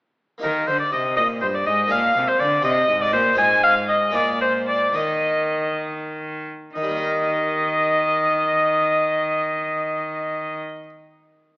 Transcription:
0.38 0.65 A#3 soft
0.38 1.85 D#4 soft
0.38 1.86 G4 soft
0.43 0.65 D#3 soft
0.43 0.67 D#3 medium
0.43 0.69 A#4 medium
0.43 0.52 A#4 medium
0.67 0.90 D3 medium
0.67 0.77 D3 medium
0.67 0.79 C5 medium
0.80 0.92 D5 medium
0.92 1.14 C3 medium
0.92 1.19 C3 medium
0.92 1.16 D#5 medium
0.92 1.02 D#5 medium
1.16 1.39 A#2 medium
1.16 1.44 A#2 medium
1.16 1.25 D#5 medium
1.16 1.28 D#5 medium
1.41 1.63 G2 medium
1.41 1.66 G2 medium
1.41 1.47 C5 medium
1.41 1.56 C5 medium
1.54 1.66 D5 medium
1.54 1.68 D5 medium
1.66 1.88 G#2 medium
1.66 1.90 G#2 medium
1.66 1.90 D#5 medium
1.66 1.93 D#5 medium
1.86 2.60 A#3 medium
1.86 2.60 D4 medium
1.86 2.61 G#4 soft
1.91 2.13 A#2 medium
1.91 2.15 A#2 medium
1.91 2.29 F5 medium
1.91 2.30 F5 medium
2.15 2.37 C3 medium
2.15 2.24 C3 medium
2.28 2.40 C5 medium
2.28 2.41 C5 medium
2.39 2.61 D3 medium
2.39 2.63 D3 medium
2.39 2.64 D5 medium
2.61 2.86 C3 medium
2.61 2.88 C3 medium
2.61 3.33 C4 medium
2.61 3.35 G4 medium
2.61 3.03 D#5 loud
2.66 3.01 D#5 loud
2.88 3.10 G#2 medium
2.88 3.14 G#2 medium
3.02 3.12 D5 medium
3.02 3.14 D5 medium
3.13 3.37 A#2 medium
3.13 3.35 A#2 medium
3.13 3.40 C5 medium
3.13 3.37 C5 loud
3.33 4.09 G#3 medium
3.33 4.10 C4 medium
3.33 4.11 F4 medium
3.38 4.16 G#2 medium
3.38 4.10 G#2 medium
3.38 3.62 G#5 loud
3.38 3.65 G#5 loud
3.63 3.75 F5 loud
3.63 3.88 F5 medium
3.89 4.13 D#5 medium
3.89 4.17 D#5 loud
4.10 4.91 G#3 medium
4.10 4.91 A#3 medium
4.10 4.93 F4 medium
4.10 4.43 D5 medium
4.14 4.96 A#2 medium
4.14 4.92 A#2 medium
4.14 4.41 D5 medium
4.41 4.53 C5 medium
4.41 4.68 C5 medium
4.68 4.97 D5 loud
4.68 4.95 D5 medium
4.92 6.46 D#3 medium
4.92 6.47 D#3 medium
4.92 6.70 A#3 medium
4.92 6.71 D#4 soft
4.92 5.83 D#5 medium
4.97 5.81 D#5 medium
6.75 10.62 D#3 medium
6.75 10.61 D#5 medium
6.75 10.62 D#5 medium
6.82 10.69 G3 medium
6.89 10.76 A#3 medium
6.96 10.83 D#4 medium
7.03 10.90 A#4 medium

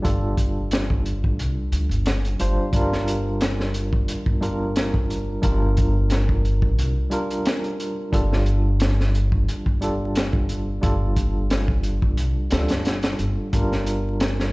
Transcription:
0.00 0.02 G3 medium
0.00 1.68 G3 medium
0.00 0.03 D4 medium
0.00 1.69 D4 medium
0.00 0.04 F4 medium
0.00 0.05 A4 medium
0.04 1.39 G1 medium
0.04 1.69 F4 medium
0.04 1.69 A4 medium
0.04 kick medium
0.04 closed hi-hat medium
0.37 kick medium
0.37 closed hi-hat medium
0.71 snare loud
0.71 closed hi-hat medium
0.90 kick loud
1.06 closed hi-hat medium
1.24 kick medium
1.39 1.55 C2 medium
1.39 closed hi-hat medium
1.72 1.88 D2 medium
1.72 closed hi-hat medium
1.89 2.36 G1 medium
1.89 closed hi-hat soft
2.06 snare loud
2.06 closed hi-hat medium
2.25 closed hi-hat soft
2.39 2.56 G1 medium
2.39 2.70 G3 medium
2.39 2.70 D4 medium
2.39 2.70 F4 medium
2.39 2.71 C5 loud
2.39 closed hi-hat medium
2.73 4.05 G1 medium
2.73 4.38 G3 medium
2.73 4.39 D4 medium
2.73 4.39 F4 medium
2.73 4.40 A#4 medium
2.73 kick loud
2.73 closed hi-hat medium
2.93 snare soft
3.08 closed hi-hat medium
3.41 snare loud
3.41 closed hi-hat medium
3.60 snare soft
3.74 closed hi-hat medium
3.93 kick medium
4.08 closed hi-hat medium
4.26 5.40 G1 medium
4.26 kick medium
4.40 5.39 G3 medium
4.40 5.39 D4 medium
4.40 5.40 F4 medium
4.40 5.40 A#4 medium
4.40 closed hi-hat medium
4.76 snare loud
4.76 closed hi-hat medium
4.94 kick medium
5.10 closed hi-hat medium
5.41 6.79 G1 medium
5.41 7.07 G3 medium
5.41 7.08 D4 medium
5.41 7.08 F4 medium
5.41 7.09 A#4 medium
5.41 kick medium
5.41 closed hi-hat medium
5.77 kick medium
5.77 closed hi-hat medium
6.10 snare loud
6.10 closed hi-hat medium
6.29 kick loud
6.45 closed hi-hat medium
6.62 kick loud
6.79 6.94 C2 medium
6.79 closed hi-hat medium
7.10 8.08 G3 medium
7.10 8.09 D4 medium
7.10 8.09 F4 medium
7.10 8.10 A#4 medium
7.10 closed hi-hat medium
7.30 closed hi-hat soft
7.46 snare loud
7.46 closed hi-hat medium
7.64 closed hi-hat soft
7.80 closed hi-hat medium
8.12 9.45 G1 medium
8.12 9.77 G3 medium
8.12 9.78 D4 medium
8.12 9.78 F4 medium
8.12 9.79 A4 medium
8.12 kick loud
8.12 closed hi-hat medium
8.33 snare soft
8.46 closed hi-hat medium
8.80 snare loud
8.80 closed hi-hat medium
9.00 snare soft
9.15 closed hi-hat medium
9.32 kick medium
9.48 closed hi-hat medium
9.66 10.80 G1 medium
9.66 kick medium
9.81 10.79 G3 medium
9.81 10.79 D4 medium
9.81 10.80 F4 medium
9.81 10.80 A4 medium
9.81 closed hi-hat medium
10.15 snare medium
10.15 closed hi-hat medium
10.33 kick medium
10.49 closed hi-hat medium
10.81 12.19 G1 medium
10.81 12.47 G3 medium
10.81 12.47 D4 medium
10.81 12.47 F4 medium
10.81 12.48 A4 medium
10.81 kick loud
10.81 closed hi-hat medium
11.16 kick medium
11.16 closed hi-hat medium
11.50 snare loud
11.50 closed hi-hat medium
11.68 kick loud
11.83 closed hi-hat medium
12.02 kick medium
12.17 12.34 C2 medium
12.17 closed hi-hat medium
12.50 12.68 D2 medium
12.50 13.48 G3 medium
12.50 13.49 D4 medium
12.50 13.49 F4 medium
12.50 13.50 A4 medium
12.50 snare loud
12.50 closed hi-hat medium
12.68 13.16 G1 medium
12.68 snare medium
12.68 closed hi-hat medium
12.85 snare medium
12.85 closed hi-hat medium
13.03 snare medium
13.03 closed hi-hat medium
13.19 13.35 G1 medium
13.19 closed hi-hat medium
13.52 14.53 G1 medium
13.52 14.53 G3 medium
13.52 14.53 D4 medium
13.52 14.53 F4 medium
13.52 14.53 A#4 medium
13.52 kick medium
13.52 closed hi-hat medium
13.72 snare soft
13.86 closed hi-hat medium
14.20 snare loud
14.20 closed hi-hat medium
14.40 snare medium

